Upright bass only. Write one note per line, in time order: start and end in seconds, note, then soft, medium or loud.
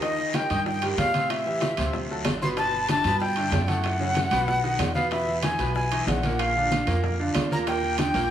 0.51 0.95 G2 loud
0.98 1.72 A2 medium
1.78 2.22 D2 loud
2.26 3.00 G1 medium
3.05 3.49 G2 loud
3.52 4.26 F#2 loud
4.31 4.76 B1 medium
4.79 5.54 E2 loud
5.59 6.04 B1 medium
6.07 6.81 A#1 loud
6.87 7.32 F2 medium
7.35 8.09 D#2 loud
8.14 8.31 A#1 loud